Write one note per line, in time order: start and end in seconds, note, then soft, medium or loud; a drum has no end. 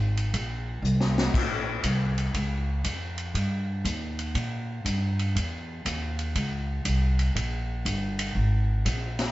0.00 0.32 G#1 medium
0.17 ride medium
0.34 0.82 A#1 medium
0.34 kick soft
0.34 ride medium
0.82 1.32 C2 medium
0.82 hi-hat pedal medium
1.01 snare medium
1.18 snare medium
1.34 1.82 A#1 medium
1.34 kick medium
1.34 crash medium
1.83 2.33 C2 medium
1.83 kick soft
1.83 hi-hat pedal medium
1.83 ride medium
2.18 ride soft
2.34 2.83 C#2 medium
2.34 kick soft
2.34 ride medium
2.84 3.33 F2 medium
2.84 kick soft
2.84 hi-hat pedal medium
2.84 ride medium
3.18 ride soft
3.34 3.83 G2 medium
3.34 kick soft
3.34 ride medium
3.84 4.33 D#2 medium
3.84 kick soft
3.84 hi-hat pedal medium
3.84 ride medium
4.19 ride soft
4.35 4.83 A#2 medium
4.35 kick soft
4.35 ride medium
4.85 5.33 G2 medium
4.85 kick soft
4.85 hi-hat pedal medium
4.85 ride medium
5.19 ride soft
5.35 5.84 E2 medium
5.35 kick soft
5.35 ride medium
5.85 6.34 D#2 loud
5.85 kick soft
5.85 hi-hat pedal medium
5.85 ride medium
6.19 ride soft
6.35 6.84 C#2 medium
6.35 kick soft
6.35 ride medium
6.85 7.34 C2 medium
6.85 kick soft
6.85 hi-hat pedal medium
6.85 ride medium
7.19 ride medium
7.35 7.84 A#1 medium
7.35 kick soft
7.35 ride medium
7.85 8.34 G1 loud
7.85 kick soft
7.85 hi-hat pedal soft
7.85 ride medium
8.19 ride medium
8.35 8.84 G#1 medium
8.35 kick soft
8.85 9.31 A#1 medium
8.85 kick soft
8.85 hi-hat pedal medium
8.85 ride medium
9.19 snare medium
9.19 ride medium